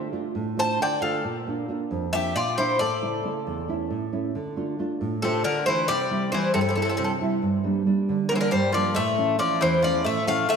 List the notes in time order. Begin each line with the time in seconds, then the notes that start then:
Already playing: D3 A3 D4 F4
0.12 A3 D4 F4
0.35 A2
0.57 A3 D4 F4 C5 A5
0.79 D3 D5 G5
1.01 A3 D4 F4 A4 F5
1.24 A#2
1.47 A#3 D4 F4
1.68 A#3 D4 F4
1.91 F2
2.13 A#3 D4 F4 G4 E5
2.35 A#2 F4 D5
2.57 A#3 D4 E4 F4 C5
2.79 A2 A4 D5
3.02 C#3 A3 E4
3.24 C#3 A3 E4
3.47 E2
3.68 A3 C#4 E4
3.90 A2
4.12 A3 C#4 E4
4.35 D3
4.56 A3 D4 F4
4.79 A3 D4 F4
5.01 A2
5.22 C3 A3 D4 F4 A4
5.44 D3 A#4
5.66 E3 A3 D4 F4 C5
5.88 C3 G3 D5
6.10 G3 C4 E4
6.32 E3 G3 C4 E4 C5
6.54 G2 C3 A4
6.61 C3 A4
6.69 C3 A4
6.75 C3 G3 C4 E4 A4
6.82 C3 A4
6.89 C3 A4
6.97 C3 A4
7.04 C3 A4
7.21 G3 C4 E4
7.42 G2
7.64 G3 A#3 D4
7.86 G3 A#3 D4
8.09 D3
8.29 D3 G3 A#3 D4 A#4
8.35 E3 C5
8.41 D3 A#4
8.51 G2 G3 C5
8.72 F3 G3 A#3 D4 D5
8.95 A2 A3 E5
9.17 E3 A3 C#4
9.39 E3 F3 A3 C#4 D5
9.61 E2 E3 C5
9.82 E3 F3 A3 C#4 D5
10.05 A2 A3 E5
10.26 E3 A3 C#4 F5
10.48 D3 A3 E5